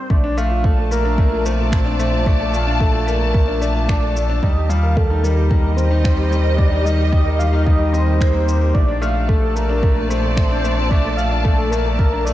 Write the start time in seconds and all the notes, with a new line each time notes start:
Already playing: C5
0.10 A#1 A#2 A3 D5, kick
0.24 D4
0.37 A3 F5, shaker
0.51 F4
0.64 A3 A4 A5, kick
0.78 A4
0.86 D5
0.91 A3 A#4, shaker
1.05 D4
1.18 A3, kick
1.32 F4
1.46 A3 C5, shaker
1.59 A4
1.72 A3, finger snap, kick
1.86 D4
1.99 A3, shaker
2.13 F4
2.26 A3 D5, kick
2.40 A4
2.53 A3 F5, shaker
2.67 D4
2.80 A3 A4, kick
2.94 F4
3.07 A3 A#4, shaker
3.21 A4
3.34 A3, kick
3.48 D4
3.61 A3 D5, shaker
3.75 F4
3.89 A3, finger snap, kick
4.03 A4
4.16 A3, shaker
4.30 D4
4.43 D#2 D#3 G3 D#5, kick
4.56 G4
4.69 G3 F5, shaker
4.83 A#4
4.97 G3 A4, kick
5.03 G4
5.10 D#4
5.22 G3 A#4 D#5, shaker
5.37 G4
5.50 G3, kick
5.64 A#4
5.76 G3 C5, shaker
5.91 D#4
6.04 G3, finger snap, kick
6.17 G4
6.31 G3, shaker
6.45 A#4
6.58 G3 D5, kick
6.72 D#4
6.85 G3 D#5, shaker
6.98 G4
7.12 G3, kick
7.26 A#4
7.39 G3 F5, shaker
7.53 D#4
7.66 G3 D#5, kick
7.80 G4
7.93 C5 D#5, shaker
8.07 A#3
8.20 A#4, finger snap, kick
8.34 A#3
8.48 G4, shaker
8.61 A#4
8.74 A#1 A#2 A3 D5, kick
8.88 D4
9.02 A3 F5 A5, shaker
9.14 A3 D5
9.28 A3 A4, kick
9.42 A4
9.55 A3 A#4, shaker
9.69 D4
9.83 A3, kick
9.97 A3
10.09 A3 C5, shaker
10.23 A4
10.37 A3, finger snap, kick
10.51 D4
10.64 A3, shaker
10.78 A3
10.89 A3 D5, kick
11.05 A4
11.17 A3 F5, shaker
11.31 D4
11.44 A3 A4, kick
11.59 A3
11.71 A3 A#4, shaker
11.86 A4
11.99 A3, kick
12.13 D4
12.25 A3 D5, shaker